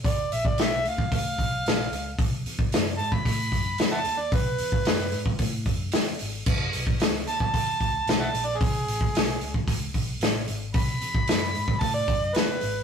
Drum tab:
CC |----------------|----------------|----------------|x---------------|
HH |o-o-o-o-o-o-o-o-|o-o-o-o-o-o-o-o-|o-o-o-o-o-o-o-o-|--o-o-o-o-o-o-o-|
SD |----o-------o---|----o-------o---|----o-------o---|----o-------o---|
BD |o--o---oo-o-----|o--o---oo-o-----|o--o---oo-o-----|o--o---oo-o-----|

CC |----------------|----------------|
HH |o-o-o-o-o-o-o-o-|o-o-o-o-o-o-o-o-|
SD |----o-------o---|----o-------o---|
BD |o--o---oo-o-----|o--o---oo-o-----|